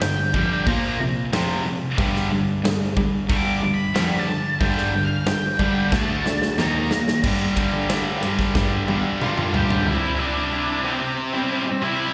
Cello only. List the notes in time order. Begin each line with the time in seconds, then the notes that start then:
0.01 G2
0.34 F2
0.67 A#2
0.99 C3
1.33 F2
1.98 G2
2.31 G2
2.64 G2
2.97 G3
3.62 G3
3.96 F2
4.61 G2
4.94 G2
5.27 G2
5.60 G3
5.92 D2
6.25 D3
6.58 D#2
7.23 G2
7.73 D3
8.23 G2
8.55 G2
8.88 G3
9.54 G2